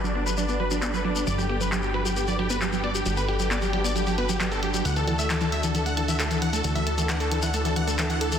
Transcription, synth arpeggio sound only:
0.04 0.11 F#3 loud
0.15 0.22 B3 medium
0.26 0.34 F#3 medium
0.37 0.45 F#3 medium
0.49 0.56 B3 medium
0.60 0.67 F#3 medium
0.71 0.78 F#3 loud
0.82 0.90 B3 medium
0.93 1.01 F#3 medium
1.05 1.12 F#3 loud
1.16 1.23 B3 medium
1.27 1.34 F#3 medium
1.38 1.46 F#3 medium
1.49 1.57 B3 medium
1.60 1.68 F#3 medium
1.72 1.79 F#3 loud
1.83 1.90 B3 medium
1.94 2.02 F#3 medium
2.05 2.13 F#3 loud
2.16 2.24 B3 medium
2.28 2.35 F#3 medium
2.39 2.46 F#3 loud
2.50 2.57 B3 medium
2.61 2.69 F#3 medium
2.72 2.80 F#3 loud
2.84 2.91 B3 medium
2.95 3.02 F#3 medium
3.06 3.13 F#3 loud
3.17 3.25 B3 medium
3.28 3.36 F#3 medium
3.40 3.47 F#3 loud
3.51 3.58 B3 medium
3.62 3.69 F#3 medium
3.73 3.81 F#3 loud
3.84 3.92 B3 medium
3.96 4.03 F#3 medium
4.07 4.14 F#3 loud
4.18 4.25 B3 medium
4.29 4.37 F#3 medium
4.40 4.48 F#3 loud
4.52 4.59 B3 medium
4.63 4.70 F#3 medium
4.74 4.81 F#3 loud
4.85 4.93 A3 medium
4.96 5.04 E3 medium
5.08 5.15 E3 loud
5.19 5.26 A3 medium
5.30 5.37 E3 medium
5.41 5.49 E3 loud
5.52 5.60 A3 medium
5.64 5.71 E3 medium
5.75 5.82 E3 loud
5.86 5.93 A3 medium
5.97 6.04 E3 medium
6.08 6.16 E3 loud
6.19 6.27 A3 medium
6.31 6.38 E3 medium
6.42 6.49 E3 loud
6.53 6.60 A3 medium
6.64 6.72 E3 medium
6.75 6.83 E3 loud
6.87 6.94 A3 medium
6.98 7.05 E3 medium
7.09 7.16 E3 loud
7.20 7.28 A3 medium
7.31 7.39 E3 medium
7.43 7.50 E3 loud
7.54 7.61 A3 medium
7.65 7.72 E3 medium
7.76 7.84 E3 loud
7.87 7.95 A3 medium
7.99 8.06 E3 medium
8.10 8.17 E3 medium
8.21 8.28 A3 medium
8.32 8.39 E3 medium

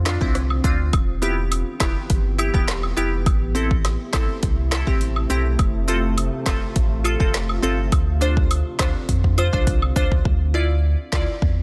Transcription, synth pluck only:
0.06 0.12 D4 medium
0.06 0.12 F4 loud
0.21 0.32 C4 medium
0.21 0.32 D4 medium
0.21 0.33 E4 medium
0.64 0.76 C4 medium
0.64 0.77 D4 medium
0.64 0.77 F4 loud
1.22 1.34 B3 medium
1.22 1.35 E4 medium
1.22 1.35 G4 loud
1.80 1.93 B3 medium
1.80 1.93 E4 medium
1.80 1.93 G4 medium
2.38 2.45 E4 medium
2.38 2.45 G4 loud
2.54 2.65 B3 medium
2.54 2.65 E4 medium
2.54 2.65 G4 medium
2.97 3.09 B3 medium
2.97 3.09 E4 medium
2.97 3.10 G4 loud
3.55 3.67 C4 medium
3.55 3.68 E4 medium
3.55 3.68 A4 medium
4.13 4.26 C4 medium
4.13 4.26 E4 medium
4.13 4.26 A4 loud
4.71 4.78 E4 loud
4.71 4.78 A4 loud
4.87 4.98 C4 medium
4.87 4.98 E4 medium
4.87 4.99 G4 medium
5.30 5.42 C4 medium
5.30 5.43 E4 medium
5.30 5.43 G4 loud
5.88 6.00 C4 medium
5.88 6.01 F4 medium
5.88 6.01 A4 medium
6.46 6.59 C4 medium
6.46 6.59 F4 medium
6.46 6.59 A4 loud
7.04 7.11 F4 medium
7.04 7.11 A4 loud
7.20 7.31 C4 medium
7.20 7.31 F4 medium
7.20 7.32 A4 medium
7.63 7.75 C4 medium
7.63 7.75 F4 medium
7.63 7.76 A4 loud
8.21 8.34 D4 medium
8.21 8.34 F4 medium
8.21 8.34 C5 loud
8.79 8.92 D4 medium
8.79 8.92 F4 medium
8.79 8.92 C5 medium
9.38 9.44 F4 medium
9.38 9.44 C5 loud
9.53 9.64 D4 medium
9.53 9.64 F4 medium
9.53 9.65 C5 medium
9.96 10.08 D4 medium
9.96 10.09 F4 medium
9.96 10.09 C5 loud
10.54 10.67 E4 medium
10.54 10.67 F4 medium
10.54 10.67 D5 medium
11.13 11.25 E4 medium
11.13 11.25 F4 medium
11.13 11.25 D5 medium

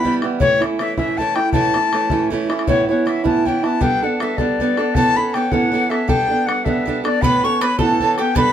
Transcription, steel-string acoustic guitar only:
0.03 0.22 E3 medium
0.03 0.22 G3 medium
0.03 0.22 B3 medium
0.03 0.21 E4 medium
0.22 0.40 E3 soft
0.22 0.40 G3 medium
0.22 0.41 B3 medium
0.22 0.40 E4 soft
0.40 0.61 A2 medium
0.40 0.62 E3 medium
0.40 0.62 A3 medium
0.40 0.61 C#4 medium
0.40 0.59 E4 medium
0.60 0.79 A3 soft
0.60 0.80 C#4 soft
0.60 0.79 E4 medium
0.79 0.97 E3 medium
0.79 0.98 A3 medium
0.79 0.97 C#4 medium
0.79 0.96 E4 medium
0.97 1.19 A2 soft
0.97 1.17 E3 medium
0.97 1.19 A3 medium
0.97 1.19 C#4 medium
0.97 1.18 E4 medium
1.19 1.36 E3 medium
1.19 1.37 A3 medium
1.19 1.36 C#4 medium
1.19 1.35 E4 medium
1.36 1.53 A3 soft
1.36 1.53 C#4 soft
1.36 1.54 E4 medium
1.53 1.75 A2 medium
1.53 1.75 E3 medium
1.53 1.75 A3 medium
1.53 1.75 C#4 medium
1.53 1.74 E4 medium
1.75 1.92 A3 soft
1.75 1.93 C#4 soft
1.75 1.93 E4 medium
1.93 2.11 E3 soft
1.93 2.10 A3 medium
1.93 2.10 C#4 medium
1.93 2.09 E4 medium
2.10 2.33 A2 medium
2.10 2.29 E3 medium
2.10 2.30 A3 medium
2.10 2.31 C#4 medium
2.10 2.32 E4 medium
2.30 2.49 E3 medium
2.30 2.50 A3 medium
2.30 2.50 C#4 medium
2.30 2.48 E4 medium
2.49 2.68 A3 soft
2.49 2.67 C#4 medium
2.49 2.67 E4 medium
2.67 2.89 A2 medium
2.67 2.89 E3 medium
2.67 2.89 B3 medium
2.67 2.89 C#4 medium
2.67 2.87 E4 medium
2.89 3.06 B3 soft
2.89 3.06 C#4 soft
2.89 3.07 E4 medium
3.05 3.24 E3 medium
3.05 3.24 B3 medium
3.05 3.23 C#4 medium
3.05 3.23 E4 medium
3.24 3.46 A2 medium
3.24 3.44 E3 soft
3.24 3.45 B3 medium
3.24 3.46 C#4 medium
3.24 3.45 E4 medium
3.45 3.63 E3 medium
3.45 3.64 B3 medium
3.45 3.63 C#4 medium
3.45 3.62 E4 medium
3.63 3.80 B3 soft
3.63 3.81 C#4 medium
3.63 3.81 E4 medium
3.81 4.02 G3 medium
3.81 4.03 B3 medium
3.81 4.03 D4 medium
3.81 4.01 A4 medium
4.03 4.20 B3 soft
4.03 4.20 D4 medium
4.03 4.21 A4 medium
4.20 4.38 G3 soft
4.20 4.39 B3 medium
4.20 4.38 D4 medium
4.20 4.37 A4 medium
4.38 4.59 G3 medium
4.38 4.60 B3 medium
4.38 4.60 D4 medium
4.38 4.59 A4 medium
4.60 4.78 G3 medium
4.60 4.78 B3 medium
4.60 4.77 D4 medium
4.60 4.76 A4 medium
4.78 4.95 B3 soft
4.78 4.96 D4 medium
4.78 4.95 A4 medium
4.95 5.17 A2 medium
4.95 5.17 E3 medium
4.95 5.17 B3 medium
4.95 5.17 C#4 medium
4.95 5.15 A4 medium
5.16 5.34 B3 soft
5.16 5.35 C#4 soft
5.16 5.34 A4 medium
5.34 5.52 E3 medium
5.34 5.52 B3 medium
5.34 5.51 C#4 medium
5.34 5.51 A4 medium
5.52 5.74 A2 medium
5.52 5.70 E3 medium
5.52 5.72 B3 medium
5.52 5.73 C#4 medium
5.52 5.73 A4 medium
5.72 5.90 E3 medium
5.72 5.91 B3 medium
5.72 5.91 C#4 medium
5.72 5.89 A4 medium
5.90 6.07 B3 soft
5.90 6.09 C#4 soft
5.90 6.08 A4 medium
6.08 6.29 G3 medium
6.08 6.30 B3 medium
6.08 6.29 D4 medium
6.08 6.27 A4 medium
6.29 6.47 B3 soft
6.29 6.48 D4 medium
6.29 6.47 A4 soft
6.47 6.65 G3 medium
6.47 6.66 B3 medium
6.47 6.65 D4 medium
6.47 6.64 A4 medium
6.65 6.84 G3 medium
6.65 6.86 B3 medium
6.65 6.87 D4 medium
6.65 6.87 A4 medium
6.86 7.04 G3 medium
6.86 7.05 B3 medium
6.86 7.04 D4 medium
6.86 7.03 A4 medium
7.04 7.22 B3 soft
7.04 7.23 D4 soft
7.04 7.22 A4 medium
7.22 7.44 A2 medium
7.22 7.44 E3 medium
7.22 7.44 B3 medium
7.22 7.44 C#4 medium
7.22 7.43 A4 medium
7.44 7.61 B3 soft
7.44 7.62 C#4 soft
7.44 7.62 A4 medium
7.61 7.79 E3 soft
7.61 7.79 B3 medium
7.61 7.78 C#4 medium
7.61 7.78 A4 medium
7.79 8.01 A2 soft
7.79 7.99 E3 medium
7.79 8.00 B3 medium
7.79 8.01 C#4 medium
7.79 8.00 A4 medium
8.01 8.19 E3 medium
8.01 8.19 B3 medium
8.01 8.18 C#4 medium
8.01 8.17 A4 medium
8.18 8.35 B3 soft
8.18 8.36 C#4 soft
8.18 8.36 A4 medium
8.35 8.53 G3 medium
8.35 8.53 B3 medium
8.35 8.53 D4 medium
8.35 8.53 A4 medium

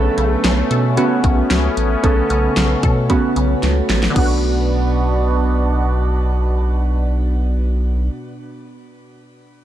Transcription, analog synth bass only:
0.18 0.36 B1 medium
0.44 0.63 B1 loud
0.71 0.99 B2 loud
1.24 1.42 B1 loud
1.50 1.69 C#2 medium
1.77 1.96 A1 medium
2.04 2.22 B1 loud
2.30 2.49 B1 loud
2.57 2.75 B1 loud
2.83 3.11 B2 medium
3.36 3.55 B1 loud
3.63 3.81 C#2 medium
3.89 4.08 A1 loud
4.16 8.09 B1 loud

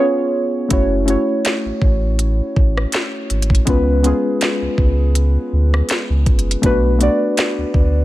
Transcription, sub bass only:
0.71 1.17 F#1 loud
1.65 1.72 A1 soft
1.82 2.41 A1 loud
2.57 2.86 A1 medium
3.30 3.60 G#1 medium
3.67 4.13 C#2 loud
4.62 4.68 C#2 soft
4.78 5.37 C#2 loud
5.53 5.82 D2 medium
6.10 6.28 C#2 loud
6.27 6.56 F#1 medium
6.63 7.09 B1 loud
7.58 7.65 D2 soft
7.74 8.04 D2 medium

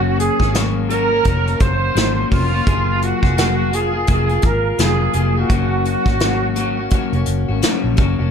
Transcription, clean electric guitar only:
0.00 0.39 F#3 medium
0.00 0.40 A#3 medium
0.00 0.40 C#4 medium
0.00 0.38 F#4 medium
0.39 0.54 A#3 soft
0.39 0.54 C#4 soft
0.39 0.54 F#4 medium
0.53 0.88 F#3 medium
0.53 0.90 A#3 medium
0.53 0.90 C#4 medium
0.53 0.90 F#4 medium
0.89 1.11 F#3 medium
0.89 1.11 A#3 medium
0.89 1.11 C#4 medium
0.89 1.09 F#4 medium
1.11 1.23 A#3 soft
1.11 1.25 C#4 soft
1.11 1.25 F#4 medium
1.23 1.45 F#3 medium
1.23 1.46 A#3 medium
1.23 1.46 C#4 medium
1.23 1.44 F#4 medium
1.46 1.95 A#3 soft
1.46 1.95 C#4 medium
1.46 1.95 F#4 medium
1.95 2.29 F#3 medium
1.95 2.30 A#3 medium
1.95 2.32 C#4 medium
1.95 2.32 F#4 medium
2.30 2.52 F#3 medium
2.30 2.52 A#3 medium
2.30 2.52 C#4 medium
2.30 2.50 F#4 medium
2.51 2.65 A#3 soft
2.51 2.67 C#4 soft
2.51 2.66 F#4 medium
2.66 3.23 F#3 medium
2.66 3.23 A#3 medium
2.66 3.23 F4 medium
2.66 3.21 G#4 medium
3.22 3.37 A#3 soft
3.22 3.38 F4 soft
3.22 3.37 G#4 medium
3.37 3.70 F#3 medium
3.37 3.72 A#3 medium
3.37 3.73 G#4 medium
3.71 3.93 F#3 medium
3.71 3.94 A#3 medium
3.71 3.92 F4 medium
3.71 3.90 G#4 medium
3.91 4.07 A#3 soft
3.91 4.08 F4 soft
3.91 4.07 G#4 medium
4.08 4.29 F#3 medium
4.08 4.29 A#3 medium
4.08 4.29 F4 medium
4.08 4.27 G#4 medium
4.29 4.78 A#3 soft
4.29 4.79 F4 soft
4.29 4.79 G#4 medium
4.78 5.13 F#3 medium
4.78 5.14 A#3 medium
4.78 5.15 F4 medium
4.78 5.15 G#4 medium
5.14 5.35 F#3 medium
5.14 5.36 A#3 medium
5.14 5.36 F4 medium
5.14 5.34 G#4 medium
5.35 5.49 A#3 soft
5.35 5.50 F4 medium
5.35 5.49 G#4 medium
5.49 6.06 F#3 medium
5.49 6.07 A#3 medium
5.49 6.06 C#4 medium
5.49 6.05 F#4 medium
6.06 6.20 A#3 soft
6.06 6.21 C#4 medium
6.06 6.20 F#4 medium
6.21 6.55 F#3 medium
6.21 6.56 A#3 medium
6.21 6.57 C#4 medium
6.21 6.57 F#4 medium
6.56 6.77 F#3 medium
6.56 6.78 A#3 medium
6.56 6.78 C#4 medium
6.56 6.76 F#4 medium
6.77 6.91 A#3 soft
6.77 6.93 C#4 soft
6.77 6.92 F#4 medium
6.92 7.13 F#3 medium
6.92 7.13 A#3 medium
6.92 7.14 C#4 medium
6.92 7.12 F#4 medium
7.13 7.50 A#3 soft
7.13 7.49 C#4 medium
7.13 7.47 F#4 medium
7.49 7.62 A#3 soft
7.49 7.63 C#4 soft
7.49 7.63 F#4 medium
7.62 7.96 F#3 medium
7.62 7.97 A#3 medium
7.62 7.98 C#4 medium
7.62 7.99 F#4 medium
7.97 8.19 F#3 medium
7.97 8.19 A#3 medium
7.97 8.19 C#4 medium
7.97 8.18 F#4 medium
8.19 8.31 A#3 soft
8.19 8.31 C#4 soft
8.19 8.31 F#4 medium

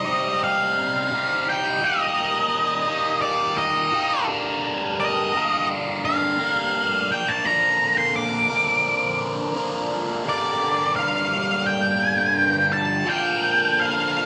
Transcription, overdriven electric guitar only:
0.05 1.10 C3 medium
0.05 1.12 G3 medium
0.05 1.10 C4 medium
0.05 1.10 D#4 medium
0.05 1.15 G4 medium
1.11 1.80 C3 medium
1.11 1.82 G3 medium
1.11 1.81 C4 medium
1.11 1.82 D#4 medium
1.15 1.85 G4 medium
1.81 2.86 D#3 medium
1.81 2.89 G3 medium
1.81 2.88 A#3 medium
1.81 2.86 D#4 loud
1.81 2.87 G4 medium
2.87 3.91 D#3 medium
2.87 3.92 G3 medium
2.87 3.93 A#3 medium
2.87 3.91 D#4 medium
2.87 3.91 G4 medium
3.92 4.26 D#3 medium
3.92 4.27 G3 medium
3.92 4.30 A#3 medium
3.92 4.27 D#4 medium
3.92 4.27 G4 medium
4.28 5.32 G2 medium
4.28 5.32 D3 medium
4.28 5.32 G3 medium
4.28 5.36 A#3 medium
4.28 5.36 D4 medium
4.28 5.36 A#4 loud
5.34 6.37 G2 medium
5.34 6.38 D3 medium
5.34 6.38 G3 medium
5.34 6.40 A#3 medium
5.34 6.40 D4 medium
5.34 6.39 A#4 medium
6.39 7.10 G2 medium
6.39 7.09 D3 medium
6.39 7.09 G3 medium
6.39 7.46 A#3 medium
6.39 7.47 D4 medium
6.39 7.48 A#4 medium
7.44 8.48 A#2 loud
7.44 8.48 D3 loud
7.44 8.49 F3 loud
7.44 8.49 A#3 medium
7.44 8.49 D4 loud
7.44 8.49 A#4 loud
8.50 9.52 A#2 medium
8.50 9.53 D3 medium
8.50 9.54 F3 medium
8.50 9.54 A#3 medium
8.50 9.54 D4 medium
8.50 9.54 A#4 medium
9.53 10.23 A#2 medium
9.53 10.23 D3 medium
9.53 10.24 F3 medium
9.53 10.24 A#3 medium
9.53 10.25 D4 medium
9.53 10.25 A#4 medium
10.24 13.04 G2 loud
10.24 13.05 D3 loud
10.24 13.05 G3 medium
10.24 13.06 A#3 loud
10.24 13.06 D4 medium
10.24 13.06 A#4 medium
13.06 14.26 A#2 medium
13.06 14.26 D3 medium
13.06 14.26 F3 medium
13.06 14.26 A#3 medium
13.06 14.26 D4 loud
13.06 14.26 A#4 loud

